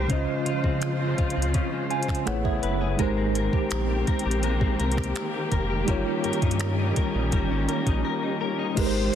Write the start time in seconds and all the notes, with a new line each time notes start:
Already playing: G#3 C4 A#4 C5
0.07 C#2 C#3 F3 C#4 D#4 F4 C5, kick, closed hi-hat
0.13 F4 D#5
0.28 G#3
0.46 C#3 F4, closed hi-hat
0.64 C#3 C4, kick
0.82 F4, finger snap, closed hi-hat
1.00 C4
1.18 C#2 F4, kick, closed hi-hat
1.30 closed hi-hat
1.36 C#2 C4
1.42 closed hi-hat
1.54 C#3 F4, kick, closed hi-hat
1.72 G#3
1.90 F4 G#5, closed hi-hat
2.03 closed hi-hat
2.08 C4, finger snap, kick
2.15 closed hi-hat
2.26 A1 C#3 A3 B3 E4 G#4 B4 C#5 F#5, finger snap, closed hi-hat
2.45 G#4 E5, kick
2.63 F#1 B4, closed hi-hat
2.81 G#4
2.97 G#1 D#3 G#3 A#3 C4 D#4 G4 A#4, kick, closed hi-hat
3.01 A#4 C5
3.17 C4
3.35 A#4, closed hi-hat
3.53 A#1 G4, kick
3.71 A#1 A#4, finger snap, closed hi-hat
3.89 G4
4.07 A#4, kick, closed hi-hat
4.19 closed hi-hat
4.25 A#1 G4
4.31 closed hi-hat
4.43 G#3 A#4, closed hi-hat
4.61 C4, kick
4.79 C2 A#4, closed hi-hat
4.92 closed hi-hat
4.97 G4, finger snap, kick
5.04 closed hi-hat
5.16 A#4, finger snap, closed hi-hat
5.34 G4
5.52 F1 A#4, kick, closed hi-hat
5.70 G4
5.85 G1 G3 C#4 D#4 F4 A#4, kick, closed hi-hat
5.89 A#4 C#5
6.06 C#4
6.24 G2 A#4, closed hi-hat
6.33 closed hi-hat
6.42 G2 D#4, kick, closed hi-hat
6.51 closed hi-hat
6.60 A#4, finger snap, closed hi-hat
6.78 D#4
6.96 A#1 A#4, kick, closed hi-hat
7.14 A#1 D#4
7.32 G1 G3 A#4, kick, closed hi-hat
7.50 G#1 C#4
7.69 A#4, closed hi-hat
7.87 A#1 D#4, kick, closed hi-hat
8.05 A#4
8.23 D#4
8.41 A#4
8.59 D#4
8.75 G#1 D#3 G#3 A#3 D#4 G4 A#4 C5, kick, closed hi-hat, crash
8.80 B4
8.87 C5